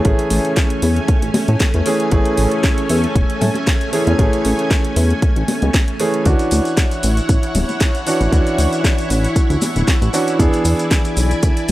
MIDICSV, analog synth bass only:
0, 0, Header, 1, 2, 480
1, 0, Start_track
1, 0, Key_signature, 3, "major"
1, 0, Tempo, 517241
1, 48, Time_signature, 4, 2, 24, 8
1, 10872, End_track
2, 0, Start_track
2, 0, Title_t, "Analog synth bass"
2, 0, Program_c, 0, 38
2, 47, Note_on_c, 0, 33, 92
2, 129, Note_off_c, 0, 33, 0
2, 287, Note_on_c, 0, 33, 75
2, 369, Note_off_c, 0, 33, 0
2, 766, Note_on_c, 0, 40, 94
2, 925, Note_off_c, 0, 40, 0
2, 1139, Note_on_c, 0, 33, 85
2, 1208, Note_off_c, 0, 33, 0
2, 1377, Note_on_c, 0, 45, 98
2, 1447, Note_off_c, 0, 45, 0
2, 1619, Note_on_c, 0, 40, 91
2, 1688, Note_off_c, 0, 40, 0
2, 1968, Note_on_c, 0, 33, 98
2, 2050, Note_off_c, 0, 33, 0
2, 2209, Note_on_c, 0, 33, 77
2, 2290, Note_off_c, 0, 33, 0
2, 2689, Note_on_c, 0, 40, 90
2, 2847, Note_off_c, 0, 40, 0
2, 2927, Note_on_c, 0, 28, 78
2, 3009, Note_off_c, 0, 28, 0
2, 3168, Note_on_c, 0, 45, 88
2, 3250, Note_off_c, 0, 45, 0
2, 3779, Note_on_c, 0, 40, 91
2, 3848, Note_off_c, 0, 40, 0
2, 3887, Note_on_c, 0, 33, 98
2, 3969, Note_off_c, 0, 33, 0
2, 4129, Note_on_c, 0, 33, 79
2, 4210, Note_off_c, 0, 33, 0
2, 4605, Note_on_c, 0, 40, 95
2, 4765, Note_off_c, 0, 40, 0
2, 4976, Note_on_c, 0, 33, 83
2, 5046, Note_off_c, 0, 33, 0
2, 5219, Note_on_c, 0, 37, 88
2, 5288, Note_off_c, 0, 37, 0
2, 5808, Note_on_c, 0, 38, 100
2, 5890, Note_off_c, 0, 38, 0
2, 6049, Note_on_c, 0, 38, 76
2, 6130, Note_off_c, 0, 38, 0
2, 6528, Note_on_c, 0, 33, 90
2, 6686, Note_off_c, 0, 33, 0
2, 6766, Note_on_c, 0, 33, 76
2, 6849, Note_off_c, 0, 33, 0
2, 7007, Note_on_c, 0, 26, 84
2, 7089, Note_off_c, 0, 26, 0
2, 7617, Note_on_c, 0, 33, 91
2, 7687, Note_off_c, 0, 33, 0
2, 7725, Note_on_c, 0, 38, 90
2, 7808, Note_off_c, 0, 38, 0
2, 7965, Note_on_c, 0, 38, 77
2, 8048, Note_off_c, 0, 38, 0
2, 8446, Note_on_c, 0, 33, 93
2, 8605, Note_off_c, 0, 33, 0
2, 8814, Note_on_c, 0, 38, 82
2, 8885, Note_off_c, 0, 38, 0
2, 9056, Note_on_c, 0, 26, 99
2, 9126, Note_off_c, 0, 26, 0
2, 9295, Note_on_c, 0, 33, 96
2, 9366, Note_off_c, 0, 33, 0
2, 9647, Note_on_c, 0, 40, 91
2, 9729, Note_off_c, 0, 40, 0
2, 9884, Note_on_c, 0, 40, 78
2, 9968, Note_off_c, 0, 40, 0
2, 10367, Note_on_c, 0, 35, 95
2, 10525, Note_off_c, 0, 35, 0
2, 10606, Note_on_c, 0, 38, 78
2, 10689, Note_off_c, 0, 38, 0
2, 10872, End_track
0, 0, End_of_file